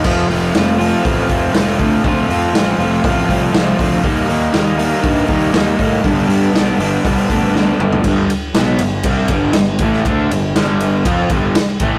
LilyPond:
<<
  \new Staff \with { instrumentName = "Overdriven electric guitar" } { \time 4/4 \key g \mixolydian \tempo 4 = 120 <f a c' f'>8 <a c' f'>8 <f a c' f'>8 <f a c' f'>8 <f a c' f'>8 <a c' f'>8 <f a c' f'>8 <a c' f'>8 | <f a c' f'>8 <a c' f'>8 <f a c' f'>8 <f a c' f'>8 <f a c' f'>8 <a c' f'>8 <f a c' f'>8 <a c' f'>8 | <ees g bes ees'>8 <g bes ees'>8 <ees g bes ees'>8 <ees g bes ees'>8 <ees g bes ees'>8 <g bes ees'>8 <ees g bes ees'>8 <g bes ees'>8 | <g, d g b d'>8 <g b d'>8 <d g b d'>8 <g, d g b d'>8 <d g b d'>8 <g b d'>8 <g, d g b d'>8 <g b d'>8 |
<g, d g>8 r8 <b, fis b>8 <g, d>8 <c g c'>8 <g, d g>8 <g, d>8 <a, e a>8 | <d a d'>8 <g, d>8 <g, d g>4 <f c' f'>8 <g, d g>8 r8 <a, e a>8 | }
  \new Staff \with { instrumentName = "Picked electric bass" } { \clef bass \time 4/4 \key g \mixolydian f,,8 f,,8 f,,4 a,,8 f,,8 f,,8 d,8 | d,8 f,8 a,,8 f,,8 a,,8 c,8 c,8 d,8 | ees,8 ees,8 ees,4 g,8 ees,8 ees,8 a,8 | g,,8 g,8 b,,8 g,,8 c,8 d,8 d,8 g,,8 |
g,,8 r8 b,,8 g,,8 c,8 g,,8 g,,8 a,,8 | d,8 g,,8 g,,4 f,8 g,,8 r8 a,,8 | }
  \new DrumStaff \with { instrumentName = "Drums" } \drummode { \time 4/4 <cymc bd>8 hho8 <hho sn>8 hho8 <hho bd>8 <hho bd>8 <hho sn>8 <hho bd>8 | <hho bd>8 hho8 <hho sn>8 hho8 <hho bd>8 <hho bd>8 <hho sn>8 <hho bd>8 | <hho bd>8 hho8 <hho sn>8 hho8 <hho bd>8 <hho bd>8 <hho sn>8 <hho bd>8 | <hho bd>8 hho8 <hho sn>8 hho8 <hho bd>8 <hho bd>8 sn8 toml16 tomfh16 |
<bd cymr>8 cymr8 <cymr sn>8 cymr8 <bd cymr>8 <bd cymr>8 <cymr sn>8 <bd cymr>16 sn16 | <bd cymr>8 cymr8 <cymr sn>8 cymr8 <bd cymr>8 <bd cymr>8 <cymr sn>8 <bd cymr>8 | }
>>